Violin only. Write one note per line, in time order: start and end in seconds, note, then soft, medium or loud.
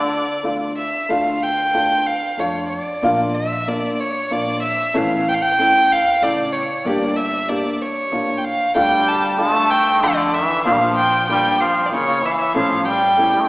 0.00 0.77 D5 medium
0.78 1.11 E5 medium
1.10 1.44 F5 medium
1.42 2.07 G5 medium
2.06 2.41 F5 medium
2.39 2.68 C#5 medium
2.69 3.36 D5 medium
3.34 3.69 E5 medium
3.68 4.01 D5 medium
4.00 4.34 C#5 medium
4.32 4.62 D5 medium
4.63 4.98 E5 medium
4.96 5.30 F5 medium
5.28 5.35 G5 medium
5.34 5.43 F5 medium
5.42 5.93 G5 loud
5.92 6.24 F5 loud
6.22 6.54 D5 loud
6.52 6.87 C#5 medium
6.86 7.17 D5 medium
7.16 7.50 E5 medium
7.48 7.83 D5 medium
7.81 8.38 C#5 medium
8.37 8.46 G5 medium
8.44 8.76 F5 medium
8.76 9.09 G5 loud
9.07 9.39 A5 medium
9.40 9.72 A5 loud
9.70 10.04 G5 loud
10.03 10.35 D5 medium
10.34 10.64 E5 medium
10.65 10.95 F5 medium
10.97 11.26 G5 loud
11.28 11.61 G5 loud
11.60 11.87 F5 medium
11.85 11.94 D5 medium
11.92 12.27 C#5 loud
12.25 12.32 E5 medium
12.31 12.40 F5 medium
12.38 12.55 E5 medium
12.56 12.85 F5 medium
12.87 13.49 G5 loud